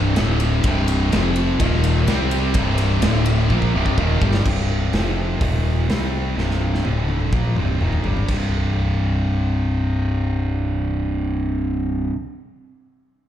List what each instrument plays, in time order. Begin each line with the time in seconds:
Already playing: fingered electric bass C1, distorted electric guitar C2 G2 C3
0.16 fingered electric bass D1, distorted electric guitar D2 A2 D3, snare, ride
0.40 ride
0.64 fingered electric bass C1, distorted electric guitar C2 G2 C3, kick, ride
0.88 ride
1.11 fingered electric bass F1, distorted electric guitar F2 C3 F3, snare, ride
1.36 ride
1.59 fingered electric bass D#1, distorted electric guitar D#2 A#2 D#3, kick, ride
1.84 ride
2.07 fingered electric bass C2, distorted electric guitar C3 G3 C4, snare, ride
2.31 ride
2.54 fingered electric bass C1, distorted electric guitar C2 G2 C3, kick, ride
2.78 ride
3.01 fingered electric bass D1, distorted electric guitar D2 A2 D3, snare, ride
3.26 ride
3.50 fingered electric bass A#1, distorted electric guitar A#2 F3 A#3, kick
3.62 kick
3.74 fingered electric bass C1, distorted electric guitar C2 G2 C3
3.86 kick
3.97 fingered electric bass D#1, distorted electric guitar D#2 A#2 D#3, kick
4.21 fingered electric bass G1, distorted electric guitar G2 D3 G3, kick
4.34 snare
4.45 fingered electric bass C1, distorted electric guitar C2 G2 C3, kick, crash
4.93 fingered electric bass F1, distorted electric guitar F2 C3 F3, snare, open hi-hat
5.40 fingered electric bass D#1, distorted electric guitar D#2 A#2 D#3, kick, open hi-hat
5.89 fingered electric bass C2, distorted electric guitar C3 G3 C4, snare, open hi-hat
6.37 fingered electric bass C1, distorted electric guitar C2 G2 C3, snare
6.51 snare
6.74 snare
6.85 fingered electric bass D1, distorted electric guitar D2 A2 D3, high tom
7.08 high tom
7.20 mid tom
7.32 fingered electric bass A#1, distorted electric guitar A#2 F3 A#3, kick
7.44 mid tom
7.56 fingered electric bass C1, distorted electric guitar C2 G2 C3, mid tom
7.80 fingered electric bass D#1, distorted electric guitar D#2 A#2 D#3, mid tom
7.93 floor tom
8.04 fingered electric bass G1, distorted electric guitar G2 D3 G3, floor tom
8.17 floor tom
8.27 fingered electric bass C1, distorted electric guitar C2 G2, kick, crash
8.31 distorted electric guitar C3